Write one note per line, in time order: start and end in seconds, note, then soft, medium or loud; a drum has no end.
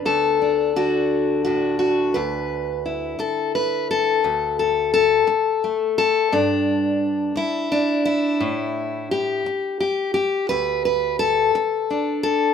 0.00 0.75 D3 medium
0.00 0.41 D4 soft
0.05 2.14 D2 medium
0.05 2.14 A4 medium
0.42 0.76 D4 soft
0.76 4.24 D3 medium
0.76 1.46 D4 soft
0.76 1.43 F#4 medium
1.45 2.15 A2 medium
1.45 2.12 D4 soft
1.45 1.78 F#4 medium
1.79 2.14 F#4 medium
2.14 3.18 D2 medium
2.14 3.19 B4 medium
2.86 4.20 E4 soft
3.19 3.54 A4 medium
3.19 muted steel-string acoustic guitar stroke medium
3.55 3.90 B4 medium
3.91 4.58 A4 medium
4.24 5.26 D2 medium
4.59 4.92 A4 medium
4.94 5.97 A4 medium
5.27 muted steel-string acoustic guitar stroke medium
5.64 6.35 A3 soft
5.98 6.33 A4 medium
6.32 7.35 G2 medium
6.32 7.70 D4 medium
7.36 8.04 E4 medium
7.36 muted steel-string acoustic guitar stroke medium
7.72 8.41 D4 medium
8.05 9.10 E4 medium
8.40 9.45 A2 medium
9.11 9.79 G4 medium
9.46 muted steel-string acoustic guitar stroke medium
9.80 10.13 G4 medium
10.14 10.49 G4 medium
10.49 11.54 D2 medium
10.49 10.84 B4 loud
10.85 11.19 B4 medium
11.19 12.22 A4 medium
11.55 muted steel-string acoustic guitar stroke medium
11.90 12.54 D4 soft
12.23 12.54 A4 loud